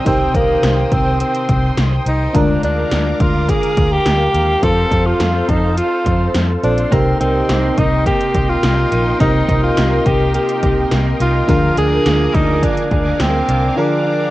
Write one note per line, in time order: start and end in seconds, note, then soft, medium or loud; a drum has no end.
0.00 2.31 C5 medium
0.00 2.30 G5 medium
0.00 2.31 D#6 medium
0.05 0.27 C2 medium
0.05 0.88 C3 medium
0.05 0.33 C4 medium
0.05 2.30 D#4 medium
0.05 2.30 G4 medium
0.05 2.31 A#4 medium
0.05 2.31 C5 medium
0.05 2.33 C6 medium
0.05 kick loud
0.05 closed hi-hat medium
0.34 0.55 C2 medium
0.34 0.94 A#3 medium
0.34 kick medium
0.34 closed hi-hat medium
0.63 0.84 C2 loud
0.63 snare loud
0.63 closed hi-hat medium
0.92 1.23 C2 medium
0.92 1.20 C4 medium
0.92 kick medium
0.92 closed hi-hat medium
1.20 1.75 C4 medium
1.20 closed hi-hat medium
1.35 closed hi-hat soft
1.49 1.69 C2 medium
1.49 kick medium
1.49 closed hi-hat medium
1.77 1.98 C2 medium
1.77 snare loud
1.77 closed hi-hat medium
2.06 2.26 C2 medium
2.06 2.37 D#4 medium
2.06 closed hi-hat medium
2.33 2.55 D2 medium
2.33 3.16 D3 medium
2.33 4.59 G#3 medium
2.33 4.58 D4 medium
2.33 2.64 D4 medium
2.33 4.59 F4 medium
2.33 4.61 A#4 medium
2.33 4.60 A#4 medium
2.33 6.88 F5 medium
2.33 4.61 A#5 medium
2.33 4.61 D6 medium
2.33 kick loud
2.33 closed hi-hat medium
2.63 2.84 D2 medium
2.63 3.23 D4 medium
2.63 closed hi-hat medium
2.91 3.12 D2 medium
2.91 snare loud
2.91 closed hi-hat medium
3.20 3.51 D2 medium
3.20 3.51 F4 medium
3.20 kick loud
3.20 closed hi-hat medium
3.49 3.94 G#4 medium
3.49 kick medium
3.49 closed hi-hat medium
3.63 closed hi-hat soft
3.77 3.98 D2 medium
3.77 kick medium
3.77 closed hi-hat medium
3.92 4.65 G4 loud
4.06 4.26 D2 loud
4.06 snare loud
4.06 closed hi-hat medium
4.34 4.55 D#2 medium
4.34 closed hi-hat medium
4.62 4.84 F2 loud
4.62 6.59 C4 medium
4.62 6.59 F4 medium
4.62 6.59 A4 medium
4.62 5.08 A4 loud
4.62 6.90 A4 medium
4.62 6.90 C5 medium
4.62 6.60 C5 medium
4.62 11.45 C6 medium
4.62 kick loud
4.62 closed hi-hat medium
4.91 5.12 F2 medium
4.91 kick medium
4.91 closed hi-hat medium
5.06 5.51 F4 medium
5.20 5.41 F2 medium
5.20 snare loud
5.20 closed hi-hat medium
5.49 5.80 F2 medium
5.49 5.77 D#4 medium
5.49 kick medium
5.49 closed hi-hat medium
5.77 6.32 F4 medium
5.77 closed hi-hat medium
6.06 6.27 F2 medium
6.06 kick medium
6.06 closed hi-hat medium
6.34 6.55 F2 medium
6.34 snare loud
6.34 closed hi-hat medium
6.63 6.84 A#1 medium
6.63 6.89 C4 soft
6.63 6.94 D4 medium
6.63 6.92 F4 soft
6.63 6.92 A4 soft
6.63 6.92 C5 soft
6.63 closed hi-hat medium
6.78 closed hi-hat medium
6.91 7.12 C2 loud
6.91 7.73 C3 medium
6.91 7.49 A#3 medium
6.91 9.16 C4 medium
6.91 7.20 C4 medium
6.91 9.16 D#4 medium
6.91 9.16 G4 medium
6.91 14.30 A#4 medium
6.91 9.17 A#4 medium
6.91 11.45 D#5 medium
6.91 11.45 G5 medium
6.91 kick loud
6.91 closed hi-hat medium
7.20 7.41 C2 medium
7.20 7.79 C4 medium
7.20 7.76 D#4 medium
7.20 closed hi-hat medium
7.49 7.69 C2 medium
7.49 8.06 A#3 medium
7.49 snare loud
7.49 closed hi-hat medium
7.78 8.08 C2 medium
7.78 8.90 D#4 medium
7.78 8.06 D#4 medium
7.78 kick medium
7.78 closed hi-hat medium
8.06 8.63 A#3 medium
8.06 8.50 G4 loud
8.06 kick medium
8.06 closed hi-hat medium
8.21 closed hi-hat soft
8.35 8.55 C2 medium
8.35 10.62 G4 medium
8.35 kick medium
8.35 closed hi-hat medium
8.49 9.20 F4 loud
8.63 8.84 C2 medium
8.63 9.20 A#3 medium
8.63 snare loud
8.63 closed hi-hat medium
8.92 9.12 A#1 medium
8.92 9.48 D#4 medium
8.92 closed hi-hat medium
9.19 9.41 C2 medium
9.19 10.02 C3 medium
9.19 9.77 A#3 medium
9.19 11.44 C4 medium
9.19 11.45 D#4 medium
9.19 9.60 D#4 loud
9.19 11.45 G4 medium
9.19 11.45 A#4 medium
9.19 kick loud
9.19 closed hi-hat medium
9.48 9.69 C2 medium
9.48 10.05 D#4 medium
9.48 kick medium
9.48 closed hi-hat medium
9.63 10.08 F4 medium
9.77 9.98 C2 loud
9.77 10.34 A#3 medium
9.77 snare loud
9.77 closed hi-hat medium
10.06 10.37 C2 medium
10.06 11.19 D#4 medium
10.06 10.34 G4 medium
10.06 kick loud
10.06 closed hi-hat medium
10.34 10.91 A#3 medium
10.34 10.89 G4 medium
10.34 closed hi-hat medium
10.49 closed hi-hat soft
10.63 10.84 C2 medium
10.63 11.54 G4 medium
10.63 kick medium
10.63 closed hi-hat medium
10.91 11.12 C2 medium
10.91 12.06 A#3 medium
10.91 snare loud
10.91 closed hi-hat medium
11.20 11.41 C2 medium
11.20 11.54 D#4 medium
11.20 11.47 F4 medium
11.20 closed hi-hat medium
11.47 11.69 D2 loud
11.47 12.30 D3 medium
11.47 13.76 F3 medium
11.47 13.73 D4 medium
11.47 13.73 F4 medium
11.47 11.76 F4 loud
11.47 13.73 G#4 medium
11.47 13.74 A#4 medium
11.47 14.30 F5 medium
11.47 13.75 G#5 medium
11.47 14.30 D6 medium
11.47 kick loud
11.47 closed hi-hat medium
11.77 11.98 D2 medium
11.77 12.34 D4 medium
11.77 12.36 G#4 loud
11.77 closed hi-hat medium
12.06 12.26 D2 loud
12.06 12.62 A#3 medium
12.06 snare loud
12.06 closed hi-hat medium
12.34 12.65 D2 medium
12.34 13.49 D4 medium
12.34 12.65 D#4 medium
12.34 kick medium
12.34 closed hi-hat medium
12.63 13.19 A#3 medium
12.63 13.22 D4 medium
12.63 kick medium
12.63 closed hi-hat medium
12.77 closed hi-hat soft
12.91 13.12 D2 medium
12.91 14.30 G#4 medium
12.91 kick medium
12.91 closed hi-hat medium
13.20 13.41 D2 loud
13.20 14.30 A#3 medium
13.20 13.77 C4 medium
13.20 snare loud
13.20 closed hi-hat medium
13.48 13.69 C2 medium
13.48 14.06 D4 medium
13.48 closed hi-hat medium
13.76 14.30 D3 medium
13.76 14.30 F3 medium
13.76 14.30 D4 medium
13.76 14.30 F4 medium
13.76 14.30 G#4 medium
13.76 14.30 A#4 medium
13.76 14.30 A#5 medium
14.06 14.30 D4 medium